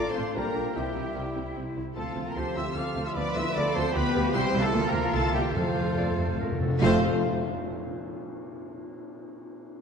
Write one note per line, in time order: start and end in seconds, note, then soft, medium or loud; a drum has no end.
0.00 0.37 A2 medium
0.00 0.37 A3 medium
0.00 0.35 F4 medium
0.00 0.55 F4 medium
0.09 0.22 C4 medium
0.09 0.35 C5 medium
0.09 0.35 A5 medium
0.09 0.36 C6 medium
0.16 0.24 A1 medium
0.16 0.25 A3 medium
0.16 0.25 F4 medium
0.16 0.37 A4 medium
0.35 0.44 A#1 medium
0.35 0.77 A#2 medium
0.35 0.49 F3 medium
0.35 0.43 G3 medium
0.35 0.49 G3 medium
0.35 0.76 A#3 medium
0.35 0.75 D4 medium
0.35 0.43 F4 medium
0.35 0.75 A#4 medium
0.35 0.76 A#4 medium
0.35 0.75 G5 medium
0.35 0.75 A#5 medium
0.55 0.64 A#1 medium
0.55 0.63 G3 soft
0.55 0.63 F4 soft
0.55 0.78 F4 soft
0.55 0.78 D5 soft
0.75 0.83 C2 medium
0.75 1.99 C3 medium
0.75 0.90 E3 medium
0.75 1.57 G3 medium
0.75 0.83 C4 medium
0.75 0.90 C4 medium
0.75 0.83 E4 medium
0.75 1.75 E4 medium
0.75 1.56 G4 medium
0.75 1.57 G4 medium
0.75 1.55 E5 medium
0.75 1.54 G5 medium
0.95 1.04 C2 medium
0.95 1.98 G3 soft
0.95 1.03 C4 soft
0.95 1.03 E4 soft
1.15 1.23 C2 medium
1.15 1.24 C4 soft
1.15 1.24 E4 soft
1.15 1.75 E4 soft
1.35 1.44 C2 soft
1.35 1.44 C4 soft
1.35 1.43 E4 soft
1.35 1.98 G4 soft
1.55 1.64 C2 soft
1.55 1.63 C4 soft
1.55 1.63 E4 soft
1.55 2.55 C5 soft
1.76 1.84 C2 soft
1.76 1.85 C4 soft
1.76 1.98 E4 soft
1.76 1.84 E4 soft
1.95 2.05 D2 medium
1.95 3.14 D3 medium
1.95 4.30 F3 medium
1.95 2.24 A3 medium
1.95 3.12 C4 medium
1.95 2.05 C4 medium
1.95 2.34 F4 medium
1.95 2.05 F4 medium
1.95 2.24 A4 medium
1.95 2.11 A4 medium
1.95 2.28 F5 medium
1.95 2.24 A5 medium
2.15 2.24 D2 medium
2.15 2.95 F3 soft
2.15 2.23 C4 soft
2.15 2.24 F4 soft
2.26 2.36 A#3 medium
2.26 2.37 A#4 medium
2.26 2.36 G5 medium
2.26 2.37 A#5 medium
2.36 2.44 D2 medium
2.36 2.56 C4 medium
2.36 2.44 C4 medium
2.36 2.44 F4 medium
2.36 2.75 F4 medium
2.36 2.77 G4 medium
2.36 2.57 C5 medium
2.36 2.58 A5 medium
2.36 2.56 C6 medium
2.56 2.64 D2 medium
2.56 2.64 C4 medium
2.56 2.76 E4 medium
2.56 2.64 F4 medium
2.56 3.18 C5 soft
2.56 2.66 E5 medium
2.56 2.77 E5 medium
2.56 2.76 C6 medium
2.56 2.76 E6 medium
2.76 2.84 D2 medium
2.76 2.85 C4 medium
2.76 3.54 F4 soft
2.76 3.06 F4 medium
2.76 2.85 F4 medium
2.76 3.16 A4 medium
2.76 3.06 F5 medium
2.76 3.05 D6 medium
2.76 3.06 F6 medium
2.96 3.04 D2 medium
2.96 4.36 F3 medium
2.96 3.04 C4 medium
2.96 3.04 F4 medium
3.05 3.16 E4 medium
3.05 3.16 E5 medium
3.05 3.17 C6 medium
3.05 3.10 E6 medium
3.15 3.24 D2 medium
3.15 4.35 D3 medium
3.15 3.24 B3 medium
3.15 4.35 B3 medium
3.15 3.25 D4 medium
3.15 3.24 F4 medium
3.15 3.55 B4 medium
3.15 3.35 D5 medium
3.15 3.36 D5 loud
3.15 3.37 B5 medium
3.15 3.35 D6 medium
3.35 3.44 D2 medium
3.35 4.75 G3 medium
3.35 3.44 B3 medium
3.35 3.45 E4 medium
3.35 3.44 F4 medium
3.35 3.56 E5 medium
3.35 3.53 C6 medium
3.35 3.55 E6 loud
3.54 3.64 D2 medium
3.54 3.64 B3 medium
3.54 3.65 D4 medium
3.54 4.13 F4 medium
3.54 3.64 F4 medium
3.54 3.95 A4 medium
3.54 3.75 D5 loud
3.54 3.76 B5 medium
3.54 3.75 D6 loud
3.73 3.84 D2 medium
3.73 3.83 B3 medium
3.73 3.95 C4 medium
3.73 3.83 F4 medium
3.73 4.75 G4 medium
3.73 3.94 C5 medium
3.73 3.95 C5 loud
3.73 3.94 A5 medium
3.73 3.95 C6 loud
3.93 4.03 D2 medium
3.93 4.02 B3 medium
3.93 4.33 B3 loud
3.93 4.02 F4 medium
3.93 4.72 G4 medium
3.93 4.33 B4 loud
3.93 4.36 B4 medium
3.93 4.35 B4 loud
3.93 4.33 G5 medium
3.93 4.33 B5 loud
4.14 4.22 D2 medium
4.14 4.22 B3 medium
4.14 4.22 F4 medium
4.14 4.36 F4 medium
4.33 4.43 C2 loud
4.33 4.76 C3 medium
4.33 4.71 E3 medium
4.33 4.41 G3 medium
4.33 4.71 G3 medium
4.33 4.61 C4 loud
4.33 4.41 E4 loud
4.33 4.60 C5 loud
4.33 4.61 C5 loud
4.33 4.58 G5 loud
4.33 4.41 C6 loud
4.53 4.62 C2 medium
4.53 4.61 G3 medium
4.53 4.61 E4 medium
4.53 4.76 E4 medium
4.53 4.76 C5 medium
4.59 4.87 A3 loud
4.59 4.87 A4 loud
4.59 4.88 A4 loud
4.59 4.65 F5 loud
4.59 4.69 A5 loud
4.74 4.82 D2 loud
4.74 5.16 D3 loud
4.74 5.15 F3 loud
4.74 4.82 A#3 medium
4.74 5.13 A#3 loud
4.74 4.82 F4 medium
4.74 5.54 F4 medium
4.86 5.00 A#3 medium
4.86 5.13 A#4 medium
4.86 5.14 A#4 loud
4.86 4.94 G5 medium
4.86 4.95 A#5 medium
4.93 5.01 D2 medium
4.93 5.01 A#3 medium
4.93 5.01 F4 medium
4.93 5.16 F4 medium
5.13 5.21 C2 medium
5.13 5.57 C3 medium
5.13 5.55 E3 medium
5.13 5.23 A3 loud
5.13 5.54 A#3 medium
5.13 5.22 A#3 medium
5.13 5.22 E4 medium
5.13 5.34 A4 loud
5.13 5.33 F5 loud
5.13 5.34 A5 loud
5.33 5.41 C2 medium
5.33 5.44 G3 medium
5.33 5.43 A#3 medium
5.33 5.57 E4 medium
5.33 5.43 E4 medium
5.33 5.55 G4 medium
5.33 5.96 C5 medium
5.33 5.40 E5 medium
5.33 5.55 G5 loud
5.54 5.62 F2 medium
5.54 5.61 F2 soft
5.54 6.79 F3 medium
5.54 6.61 F3 medium
5.54 6.38 F3 medium
5.54 6.61 A3 medium
5.54 5.64 A3 medium
5.54 5.64 C4 medium
5.54 6.37 F4 medium
5.54 6.39 F4 medium
5.54 6.61 A4 medium
5.54 6.37 C5 medium
5.54 6.38 F5 medium
5.63 5.69 F2 soft
5.71 5.77 F2 soft
5.75 5.83 F2 medium
5.75 5.85 F2 soft
5.75 5.85 A3 medium
5.75 5.85 C4 medium
5.75 6.81 F4 medium
5.86 5.94 F2 medium
5.95 6.02 F2 medium
5.95 6.05 F2 medium
5.95 6.06 A3 medium
5.95 6.06 C4 medium
5.95 6.60 C5 medium
5.95 6.07 D5 medium
6.03 6.10 F2 medium
6.11 6.18 F2 medium
6.18 6.26 F2 medium
6.18 6.27 A3 soft
6.18 6.27 C4 soft
6.18 6.28 C5 medium
6.18 6.81 F5 medium
6.27 6.33 F2 medium
6.35 6.41 F2 medium
6.35 6.46 F2 medium
6.39 6.50 F2 medium
6.39 6.49 A3 medium
6.39 6.49 C4 medium
6.39 8.07 A4 soft
6.39 6.60 A#4 medium
6.52 6.59 F2 loud
6.60 6.67 F2 loud
6.60 6.68 F2 medium
6.60 6.69 A3 soft
6.60 6.69 C4 soft
6.60 6.81 A4 medium
6.60 6.81 C5 soft
6.68 6.76 F2 loud
6.80 7.04 F1 loud
6.80 7.00 F2 loud
6.80 7.04 F2 loud
6.80 7.05 F3 medium
6.80 6.99 F3 medium
6.80 6.99 A3 medium
6.80 7.05 A3 loud
6.80 7.05 A3 medium
6.80 7.05 C4 medium
6.80 7.05 F4 medium
6.80 6.99 F4 loud
6.80 6.99 C5 loud
6.80 7.05 C5 medium
6.80 7.04 F5 loud
6.80 7.05 F5 medium
6.80 tam-tam medium
6.84 7.05 F5 medium